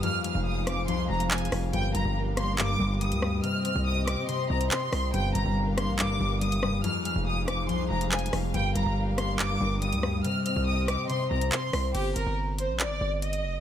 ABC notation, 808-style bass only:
X:1
M:4/4
L:1/16
Q:1/4=141
K:Gphr
V:1 name="808-style bass" clef=bass
z3 F,,,4- F,,, C,,2 F,,,4 F,,,2 | G,,,2 G,,, G,,,6- G,,, G,,,3 D,,3 | z3 C,,4 z3 C,,2 z2 C,,2 | G,,,2 G,,, G,,,4 B,,,3/2 G,,,3/2 G,,,4 F,,, G,,, |
z3 F,,,4- F,,, C,,2 F,,,4 F,,,2 | G,,,2 G,,, G,,,6- G,,, G,,,3 D,,3 | z3 C,,4 z3 C,,2 z2 C,,2 | G,,,2 G,,, G,,,4 B,,,3/2 G,,,3/2 G,,,4 F,,, G,,, |]